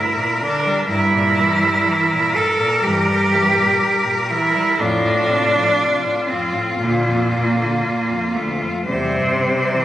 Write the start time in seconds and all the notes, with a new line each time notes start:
Already playing: G2 E4 A#4
0.17 A#2
0.42 D3 D4
0.66 G3
0.89 G2 E4 A#4
1.14 A#2
1.39 E3
1.63 G3
1.87 E3
2.13 A#2
2.36 G2 A4
2.60 A#2
2.83 G2 E3 G4
3.07 G3
3.32 E3
3.55 A#2
3.81 G2
4.05 A#2
4.30 E3 E4
4.55 G3
4.80 F2 A2 D4 F4
5.05 A2
5.29 C3
5.55 F3
5.79 C3
6.05 A2
6.29 F2 C4
6.54 A2
6.79 D2 A#2 A#3
7.05 F2
7.31 A#2
7.57 D3
7.82 A#2
8.08 F2
8.34 D2 A3
8.62 F2
8.89 E2 C3 G3 C5
9.17 G2
9.45 C3
9.73 E3